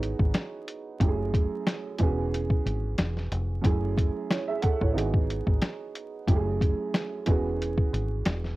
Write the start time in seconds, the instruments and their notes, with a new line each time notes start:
Already playing: fingered electric bass G#1, upright piano B3 D#4 F#4 G#4
0.03 closed hi-hat
0.19 fingered electric bass G#1, kick
0.34 snare, closed hi-hat
0.68 closed hi-hat
1.00 fingered electric bass F#1, upright piano F#2 A3 C#4 E4 G4, kick, closed hi-hat
1.08 upright piano G#4
1.34 kick, closed hi-hat
1.67 snare, closed hi-hat
1.98 fingered electric bass E1, upright piano E3 B3 C#4 F#4, kick, closed hi-hat
2.03 upright piano G#4
2.34 closed hi-hat
2.50 kick
2.66 fingered electric bass G#1, closed hi-hat
2.98 fingered electric bass E1, snare, closed hi-hat
3.17 snare
3.32 fingered electric bass F1, closed hi-hat
3.62 fingered electric bass F#1, upright piano F#2 A3 C#4 E4, kick, closed hi-hat
3.66 upright piano G#4
3.97 kick, closed hi-hat
4.30 upright piano E4 C#5, snare, closed hi-hat
4.48 upright piano G#4 E5
4.62 upright piano A4 F#5, kick, closed hi-hat
4.81 fingered electric bass A1, upright piano E4 C#5, kick
4.93 fingered electric bass G#1, upright piano B3 D#4 F#4
4.97 upright piano G#4, closed hi-hat
5.14 kick
5.30 closed hi-hat
5.47 fingered electric bass G#1, kick
5.62 snare, closed hi-hat
5.95 closed hi-hat
6.27 fingered electric bass F#1, upright piano F#2 A3 C#4 E4 G4, kick, closed hi-hat
6.36 upright piano G#4
6.61 kick, closed hi-hat
6.94 snare, closed hi-hat
7.26 fingered electric bass E1, upright piano E3 B3 C#4 F#4, kick, closed hi-hat
7.30 upright piano G#4
7.62 closed hi-hat
7.78 kick
7.93 fingered electric bass G#1, closed hi-hat
8.25 fingered electric bass E1, snare, closed hi-hat
8.44 snare